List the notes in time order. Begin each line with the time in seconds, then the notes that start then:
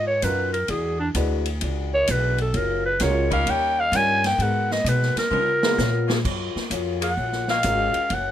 Already playing: G#2
0.07 C#5
0.22 F#2 B2 F#3 A#3 C#4 D#4 F4 A#4 B4, hi-hat pedal, ride
0.53 A#4, ride
0.67 E2 E3 G#3 D4 F#4 G#4, ride
0.99 D4
1.15 D2 E3 G#3 D4 E4 F#4 B4, hi-hat pedal, ride
1.46 ride
1.61 C#2 E3 G#3 D4 F#4, ride
1.94 C#5
2.07 B1 E3 G#3 D4 F#4 B4, hi-hat pedal, ride
2.38 A4, ride
2.54 F#1 F#3 A#3 F4 G#4 A#4, ride
2.86 B4
3.00 C#2 F#3 G#3 A#3 C#4 F4 F#4 G#4 A#4 C#5, snare, hi-hat pedal, ride
3.30 G3 C#4 D#4 A#4 F5, kick, ride
3.46 D#2 D#3 A#3 C#4 G4 G5, ride
3.80 F5
3.92 G2 D#3 G3 A#3 C#4 D#4 F4 G4 A#4, hi-hat pedal, ride
3.96 G#5
4.24 G5, snare, ride
4.38 G#2 G#3 B3 D#4 F#4 A#4 B4, ride
4.42 F#5
4.71 D#5, snare
4.84 B2 G#3 D#4 F#4 B4, hi-hat pedal, ride
5.03 snare
5.16 A#4, muted upright bass stroke, snare, ride
5.31 C#3 F3 B3 D#4 F4 A#4, high tom
5.63 G#3 B3 D#4 F4 A#4, snare
5.78 A#2 C#3 B3 F4 A#4, snare, hi-hat pedal
6.07 F#3 A#3 F4 G#4, snare
6.25 F#2 F#3 A#3 F4 G#4, kick, crash
6.55 muted upright bass stroke, snare
6.70 F2 F#3 A#3 F4 G#4, hi-hat pedal, ride
7.01 F#3 A#3 F4 G#4 F#5, ride
7.17 A#1 F#3 A#3 F4 G#4
7.32 snare
7.48 F#3 A#3 F4 A#4 F5, snare
7.63 G#1 F#3 G#3 A#3 C#4 F4 F#4 G#4 A#4, hi-hat pedal, ride
7.94 muted upright bass stroke, ride
8.10 F#1 F#2 E3 A#3 C#4 F#5, ride